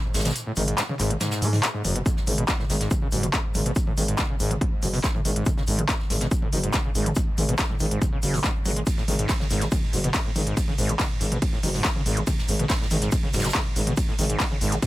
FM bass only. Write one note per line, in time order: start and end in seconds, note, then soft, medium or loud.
0.14 0.32 G#1 loud
0.57 0.74 G#1 loud
1.00 1.17 G#1 loud
1.42 1.59 G#2 medium
1.85 2.02 F#1 medium
2.27 2.45 G#1 loud
2.70 2.87 G#1 medium
3.12 3.30 F#1 medium
3.55 3.72 G#1 loud
3.98 4.15 G#1 loud
4.40 4.57 G#1 loud
4.83 5.00 F#1 medium
5.25 5.43 G#1 loud
5.68 5.85 G#1 loud
6.10 6.28 G#1 loud
6.53 6.70 F#1 medium
6.95 7.13 G#1 loud
7.38 7.55 G#1 loud
7.80 7.98 G#1 loud
8.23 8.40 F#1 medium
8.65 8.83 G#1 loud
9.08 9.25 G#1 loud
9.51 9.68 G#1 loud
9.93 10.11 F#1 medium
10.36 10.53 G#1 loud
10.78 10.96 G#1 loud
11.21 11.38 G#1 loud
11.63 11.81 F#1 medium
12.06 12.23 G#1 loud
12.48 12.66 G#1 loud
12.91 13.08 G#1 medium
13.33 13.51 F#1 medium
13.76 13.94 G#1 loud
14.19 14.36 G#1 loud
14.61 14.79 G#1 loud